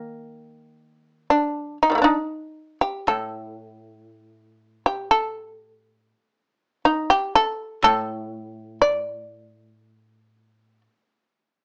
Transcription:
Already playing: koto D#3 A#3, shamisen D#4
1.30 shamisen D4
1.83 shamisen D#4
1.90 shamisen D#3 G3
1.95 shamisen A3 A#3
2.02 shamisen D4 D#4
2.81 shamisen G4
3.07 koto A2, shamisen A4
4.86 shamisen G4
5.11 shamisen A4
6.85 shamisen D#4
7.10 shamisen G4
7.35 shamisen A4
7.83 koto A2, shamisen A4
8.82 shamisen D5

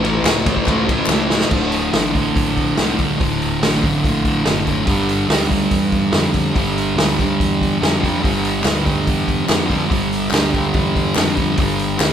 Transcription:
Already playing: fretless electric bass A1
0.03 distorted electric guitar A2 E3 A3, ride
0.23 fretless electric bass C#2, distorted electric guitar A2 E3 A3, snare, clap, ride
0.46 distorted electric guitar A2 E3 A3, kick, ride
0.57 kick
0.66 fretless electric bass C#2, distorted electric guitar A2 E3 A3, kick, clap, ride
0.88 distorted electric guitar A2 E3 A3, kick, ride
1.07 fretless electric bass C#2, distorted electric guitar A2, snare, clap
1.12 distorted electric guitar E3 A3
1.29 distorted electric guitar A2 E3 A3, snare
1.41 snare
1.49 fretless electric bass D1, distorted electric guitar D2 A2, kick, crash
1.53 distorted electric guitar D3
1.72 open hi-hat
1.93 fretless electric bass A1, distorted electric guitar D2 A2 D3, snare, open hi-hat
2.14 distorted electric guitar D3, kick, open hi-hat
2.19 distorted electric guitar A2
2.35 fretless electric bass A#1, kick, open hi-hat
2.57 kick, open hi-hat
2.77 fretless electric bass C2, distorted electric guitar D2 A2 D3, snare, open hi-hat
2.96 distorted electric guitar D3, kick, open hi-hat
3.01 distorted electric guitar A2
3.18 fretless electric bass D1, distorted electric guitar D2 A2, kick, open hi-hat
3.23 distorted electric guitar D3
3.42 open hi-hat
3.60 fretless electric bass A1, distorted electric guitar D2 A2, snare, open hi-hat
3.65 distorted electric guitar D3
3.81 distorted electric guitar D3, kick, open hi-hat
3.86 distorted electric guitar A2
4.04 fretless electric bass A#1, kick, open hi-hat
4.25 kick, open hi-hat
4.45 fretless electric bass F#1, distorted electric guitar D2 A2 D3, snare, open hi-hat
4.67 distorted electric guitar A2 D3, kick, open hi-hat
4.84 fretless electric bass G1, distorted electric guitar G2 D3, kick, open hi-hat
4.89 distorted electric guitar G3
5.09 open hi-hat
5.27 fretless electric bass D2, distorted electric guitar G2 D3 G3, snare, open hi-hat
5.47 distorted electric guitar G3, kick, open hi-hat
5.52 distorted electric guitar D3
5.71 fretless electric bass E2, kick, open hi-hat
5.92 kick, open hi-hat
6.12 fretless electric bass F2, distorted electric guitar G2 D3, snare, open hi-hat
6.16 distorted electric guitar G3
6.32 distorted electric guitar G3, kick, open hi-hat
6.36 distorted electric guitar D3
6.53 fretless electric bass G1, distorted electric guitar G2 D3, kick, open hi-hat
6.58 distorted electric guitar G3
6.78 open hi-hat
6.95 fretless electric bass D2, distorted electric guitar G2 D3 G3, snare, open hi-hat
7.16 distorted electric guitar G3, kick, open hi-hat
7.20 distorted electric guitar D3
7.40 fretless electric bass E2, kick, open hi-hat
7.61 kick, open hi-hat
7.79 fretless electric bass F2, distorted electric guitar G2 D3 G3, open hi-hat
7.83 snare
8.00 distorted electric guitar G3, kick
8.04 distorted electric guitar D3, open hi-hat
8.19 fretless electric bass G1, distorted electric guitar G2 D3
8.24 distorted electric guitar G3, kick, open hi-hat
8.45 open hi-hat
8.62 fretless electric bass D2, distorted electric guitar G2 D3 G3, snare, clap, open hi-hat
8.83 distorted electric guitar D3 G3, kick, open hi-hat
9.07 fretless electric bass E2, kick, open hi-hat
9.28 kick, open hi-hat
9.45 fretless electric bass F2, distorted electric guitar G2 D3 G3, snare, open hi-hat
9.49 clap
9.67 distorted electric guitar G3, kick, open hi-hat
9.71 distorted electric guitar D3
9.87 fretless electric bass G1, distorted electric guitar G2 D3, kick
9.92 distorted electric guitar G3, open hi-hat
10.13 open hi-hat
10.29 fretless electric bass D2, distorted electric guitar G2 D3, clap
10.33 distorted electric guitar G3, snare, open hi-hat
10.52 distorted electric guitar D3 G3, kick, open hi-hat
10.74 fretless electric bass E2, kick, open hi-hat
10.96 kick, open hi-hat
11.15 fretless electric bass F2, distorted electric guitar G2 D3 G3, snare, clap, open hi-hat
11.35 distorted electric guitar G3, kick, open hi-hat
11.39 distorted electric guitar D3
11.56 fretless electric bass G1, distorted electric guitar G2 D3, kick, open hi-hat
11.61 distorted electric guitar G3
11.79 open hi-hat
11.98 fretless electric bass D2, distorted electric guitar G2 D3, snare, clap, open hi-hat
12.03 distorted electric guitar G3

